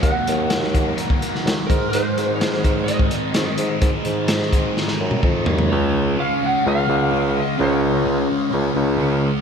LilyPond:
<<
  \new Staff \with { instrumentName = "Electric slide guitar" } { \time 4/4 \key des \major \tempo 4 = 127 ges''2. r8 bes'8 | c''4 des''4 ees''2~ | ees''2. r4 | des''4 f''8 ges''8 f''4. ees''8 |
des''4. r2 r8 | }
  \new Staff \with { instrumentName = "Distorted electric guitar" } { \clef bass \time 4/4 \key des \major <ees, ees ges bes ees'>8 ees8 ges8 bes8 ees'8 bes8 ees8 aes,8 | aes,8 ees8 aes8 c'8 ees'8 c'8 ees8 aes8 | aes,8 ees8 aes8 c'8 ees'8 c'8 ees8 aes8 | <des aes des'>4 <des aes des'>8 <aes des'>8 <des aes des'>8 <aes des'>8 <des aes des'>4 |
<des aes des'>4 <des aes des'>8 <aes des'>8 <des aes des'>8 <aes des'>8 <des aes des'>4 | }
  \new Staff \with { instrumentName = "Bassoon" } { \clef bass \time 4/4 \key des \major ees,16 r16 ees,2 r8 ees,16 r16 aes,8 | aes,16 r16 aes,2~ aes,8 aes,16 r16 aes,8 | aes,16 r16 aes,2 ges,8 f,8 ees,8 | des,4. r8 des,8 des,4. |
des,2 des,8 des,4. | }
  \new DrumStaff \with { instrumentName = "Drums" } \drummode { \time 4/4 <hh bd>8 hh8 <hh sn>16 sn16 <hh bd>8 hh16 bd16 hh16 sn16 <hh sn>8 <hh bd>8 | hh8 hh8 <hh sn>16 sn16 <hh bd>8 hh16 bd16 hh8 <hh sn>8 hh8 | <hh bd>8 hh8 <hh sn>16 sn16 <hh bd>8 sn16 sn8 toml16 bd8 tomfh16 tomfh16 | r4 r4 r4 r4 |
r4 r4 r4 r4 | }
>>